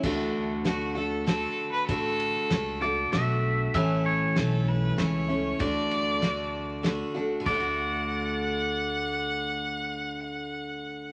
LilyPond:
<<
  \new Staff \with { instrumentName = "Clean electric guitar" } { \time 3/4 \key d \major \tempo 4 = 97 r2. | r4. d''8 e''4 | e''8 cis''8 r2 | r2. |
d''2.~ | d''2. | }
  \new Staff \with { instrumentName = "Fiddle" } { \time 3/4 \key d \major r4 fis'8 a'8 a'8. b'16 | a'2 r4 | r4 a'8 b'8 cis''4 | d''2 r4 |
fis''2.~ | fis''2. | }
  \new Staff \with { instrumentName = "Steel-string acoustic guitar" } { \time 3/4 \key d \major <d a d' fis'>4 <d a d' fis'>8 <a d' fis'>8 <d a d' fis'>4 | <d a d' fis'>4 <a d' fis'>8 <a d' fis'>8 <d a d' fis'>4 | <a, e a cis' e'>4 <e a cis' e'>4 <e a cis' e'>8 <a cis' e'>8 | <d a d' fis'>4 <d a d' fis'>4 <d a d' fis'>8 <a d' fis'>8 |
<d a d' fis'>2.~ | <d a d' fis'>2. | }
  \new Staff \with { instrumentName = "Upright bass" } { \clef bass \time 3/4 \key d \major d,2. | a,,4 cis,4 b,,4 | a,,4 b,,4 cis,4 | d,2. |
d,2.~ | d,2. | }
  \new DrumStaff \with { instrumentName = "Drums" } \drummode { \time 3/4 <cymc bd>4 <cymr sn>4 <cymr sn>4 | <bd cymr>8 cymr8 <cymr sn>4 <cymr sn>4 | <bd cymr>4 <cymr sn>4 <cymr sn>4 | <bd cymr>8 cymr8 <cymr sn>4 <cymr sn>4 |
<cymc bd>4 r4 r4 | r4 r4 r4 | }
>>